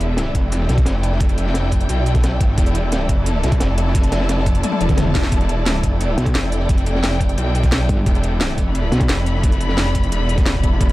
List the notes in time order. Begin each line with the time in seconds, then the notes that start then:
Already playing: E1 E4 A4 D5 E5
0.01 closed hi-hat, ride
0.17 snare, closed hi-hat, ride
0.26 ride
0.35 F1, kick, closed hi-hat, ride
0.45 G5
0.52 closed hi-hat, ride
0.69 B1, snare, closed hi-hat, ride
0.78 kick, closed hi-hat
0.86 F1, snare, closed hi-hat, ride
1.03 closed hi-hat, ride
1.12 snare
1.20 kick, closed hi-hat, ride
1.29 closed hi-hat
1.38 F1, closed hi-hat, ride
1.46 snare
1.54 snare, closed hi-hat, ride
1.63 snare
1.71 kick, closed hi-hat, ride
1.81 closed hi-hat
1.89 B1, closed hi-hat, ride
2.06 closed hi-hat, ride
2.15 kick, snare, closed hi-hat
2.23 snare, closed hi-hat, ride
2.41 G1, kick, closed hi-hat, ride
2.58 E1, kick, closed hi-hat, ride
2.66 closed hi-hat
2.75 closed hi-hat, ride
2.92 snare, closed hi-hat, ride
3.01 ride
3.09 F1, kick, closed hi-hat, ride
3.20 A5
3.26 closed hi-hat, ride
3.43 B1, snare, closed hi-hat, ride
3.52 kick, closed hi-hat
3.60 F1, snare, closed hi-hat, ride
3.78 closed hi-hat, ride
3.87 snare
3.95 kick, closed hi-hat, ride
4.03 closed hi-hat
4.12 F1, snare, closed hi-hat, ride
4.21 snare
4.29 snare, closed hi-hat, ride
4.38 snare
4.46 kick, closed hi-hat, ride
4.55 closed hi-hat
4.63 closed hi-hat, high tom, ride, swell
4.72 high tom
4.81 E1, closed hi-hat, ride
4.89 kick, snare, closed hi-hat, mid tom
4.97 snare, closed hi-hat, mid tom, ride
5.06 mid tom
5.15 kick, snare, closed hi-hat, ride
5.23 snare
5.32 E1, kick, closed hi-hat, ride
5.41 closed hi-hat
5.49 closed hi-hat, ride
5.66 snare, closed hi-hat, ride
5.74 ride
5.83 F1, kick, closed hi-hat, ride
5.94 G5
6.01 closed hi-hat, ride
6.18 B1, snare, closed hi-hat, ride
6.26 kick, closed hi-hat
6.35 F1, snare, closed hi-hat, ride
6.52 closed hi-hat, ride
6.60 snare
6.69 kick, closed hi-hat, ride
6.78 closed hi-hat
6.86 F1, closed hi-hat, ride
6.95 snare
7.03 snare, closed hi-hat, ride
7.12 snare
7.20 kick, closed hi-hat, ride
7.29 closed hi-hat
7.38 B1, closed hi-hat, ride
7.55 closed hi-hat, ride
7.63 kick, snare, closed hi-hat
7.72 snare, closed hi-hat, ride
7.89 G1, kick, closed hi-hat, ride
8.06 E1, kick, closed hi-hat, ride
8.15 closed hi-hat
8.23 closed hi-hat, ride
8.41 snare, closed hi-hat, ride
8.50 ride
8.58 F1, kick, closed hi-hat, ride
8.68 B5
8.75 closed hi-hat, ride
8.92 B1, snare, closed hi-hat, ride
9.01 kick, closed hi-hat, ride
9.09 F1, snare, closed hi-hat, ride
9.26 closed hi-hat, ride
9.35 snare
9.43 kick, closed hi-hat, ride
9.52 closed hi-hat
9.60 F1, closed hi-hat, ride
9.69 snare
9.77 snare, closed hi-hat, ride
9.87 snare
9.95 kick, closed hi-hat, ride
10.03 closed hi-hat
10.12 E1, closed hi-hat, ride
10.29 closed hi-hat, ride
10.37 kick, snare, closed hi-hat
10.45 snare, closed hi-hat, ride
10.55 kick
10.63 kick, closed hi-hat, ride
10.81 E1, kick, closed hi-hat, ride
10.89 closed hi-hat